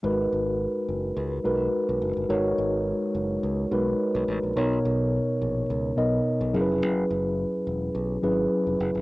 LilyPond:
<<
  \new Staff \with { instrumentName = "Tine electric piano" } { \time 4/4 \key gis \minor \tempo 4 = 106 <gis dis' fis' ais' b'>4 r4. <gis dis' fis' ais' b'>4 r8 | <gis dis' fis' ais' cis''>4 r4. <gis dis' fis' ais' b'>4 r8 | <b, b dis' ais' cis''>4 r4. <b, b dis' ais' dis''>4 <fis cis' e' gis' ais' b'>8~ | <fis cis' e' gis' ais' b'>4 r4. <fis cis' e' gis' b'>4 r8 | }
  \new Staff \with { instrumentName = "Fingered electric bass" } { \clef bass \time 4/4 \key gis \minor gis,,8 gis,,8. r16 fis,,8 cis,8 b,,8 r16 b,,16 fis,,16 g,,16 | gis,,8 gis,,8. r16 fis,,8 cis,8 b,,8 r16 b,,16 a,,16 ais,,16 | b,,8 b,,8. r16 ais,,8 cis,8 b,,8 r16 b,,16 fis,,16 eis,,16 | fis,,8 fis,,8. r16 e,,8 b,,8 gis,,8 r16 eis,,16 fis,,16 g,,16 | }
>>